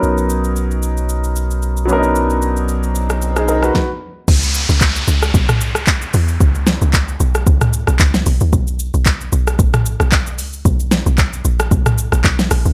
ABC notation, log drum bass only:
X:1
M:4/4
L:1/16
Q:"Swing 16ths" 1/4=113
K:B
V:1 name="Log drum bass" clef=bass
z16 | z16 | C,,3 C,,3 C,,2 B,,,3 C,,3 E,,2 | C,,3 C,,3 B,,,2 C,,3 B,,, C,,2 B,,, D,, |
B,,,3 B,,,3 B,,,2 A,,,3 B,,,3 C,,2 | B,,,3 B,,,3 A,,,2 B,,,3 A,,, B,,,2 A,,, C,, |]